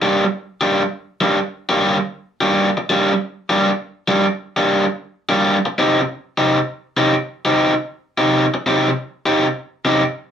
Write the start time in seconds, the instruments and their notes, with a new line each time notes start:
0.02 overdriven electric guitar G3 A#3 D4 G4
0.25 muted overdriven electric guitar stroke
0.61 overdriven electric guitar G3 A#3 D4 G4
1.21 overdriven electric guitar G3 A#3 D4 G4
1.69 overdriven electric guitar G3 A#3 D4 G4
2.41 overdriven electric guitar G3 A#3 D4 G4
2.77 muted overdriven electric guitar stroke
2.90 overdriven electric guitar G3 A#3 D4 G4
3.13 muted overdriven electric guitar stroke
3.50 overdriven electric guitar G3 A#3 D4 G4
4.08 overdriven electric guitar G3 A#3 D4 G4
4.57 overdriven electric guitar G3 A#3 D4 G4
5.29 overdriven electric guitar G3 A#3 D4 G4
5.66 muted overdriven electric guitar stroke
5.78 overdriven electric guitar C3 C4 D#4 G4
6.01 muted overdriven electric guitar stroke
6.38 overdriven electric guitar C3 C4 D#4 G4
6.97 overdriven electric guitar C3 C4 D#4 G4
7.45 overdriven electric guitar C3 C4 D#4 G4
8.18 overdriven electric guitar C3 C4 D#4 G4
8.54 muted overdriven electric guitar stroke
8.66 overdriven electric guitar C3 C4 D#4 G4
8.90 muted overdriven electric guitar stroke
9.26 overdriven electric guitar C3 C4 D#4 G4
9.85 overdriven electric guitar C3 C4 D#4 G4